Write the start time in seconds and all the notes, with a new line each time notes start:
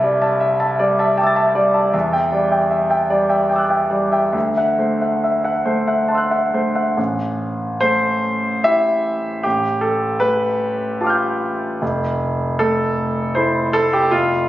Already playing: C2 E5 A5
0.03 G3 D5
0.21 E5 A5
0.40 E5
0.60 E5 A5
0.79 G3 D5
0.99 E5 A5
1.17 G5 A5 D6
1.24 E6 A6
1.35 E5 A5
1.55 G3 D5
1.74 E5 A5
1.93 E2 E5
2.12 E5 G5
2.32 G3 D5
2.51 E5 G5
2.70 E5
2.90 E5 G5
3.10 G3 D5
3.29 E5 G5
3.50 G5 D6
3.56 E6 F#6
3.69 E5 G5
3.90 G3 D5
4.12 E5 G5
4.32 D2 E5
4.57 E5 F#5
4.79 A3 C5
5.01 E5 F#5
5.24 E5
5.44 E5 F#5
5.65 A3 C5
5.88 E5 F#5
6.08 F#5 A5 C6
6.15 E6 F#6
6.31 E5 F#5
6.54 A3 C5
6.75 E5 F#5
6.97 A1
7.81 A3 C5
8.64 E4 G4 E5
9.43 A1 G4
9.81 A4
10.20 A3 B4
11.01 F4 G4 A5 D6
11.07 F6 G6
11.82 F1
12.59 A3 A4
13.35 E4 A4 C5
13.73 A4
13.93 G4
14.11 F1 F4